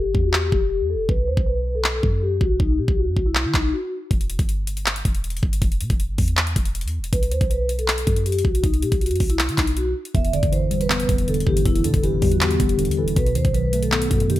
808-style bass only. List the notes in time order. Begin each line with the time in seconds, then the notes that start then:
0.05 G1
0.15 E2
0.52 E1
0.81 E2
0.95 E1
1.09 B1
1.28 D#2
1.37 B1
2.03 F#2
2.41 B1
2.60 B1
2.79 B2
2.88 B1
3.07 F#2
3.17 B1
3.45 D#3
3.54 B1
4.11 E1
4.39 G1
5.05 E1
5.43 G1
5.62 E1
5.81 B2
5.90 E1
6.09 G1
6.18 E2
6.56 E1
6.84 E2
6.99 E1
7.13 B1
7.32 D#2
7.41 B1
8.07 F#2
8.45 B1
8.64 B1
8.82 B2
8.92 B1
9.11 F#2
9.20 B1
9.49 D#3
9.58 B1
10.15 E1
10.43 G1
11.09 E1
11.47 G1
11.66 E1
11.84 B2
11.94 E1
12.13 G1
12.22 E2
12.60 E1
12.88 E2
13.02 E1
13.16 B1
13.35 D#2
13.45 B1
14.11 F#2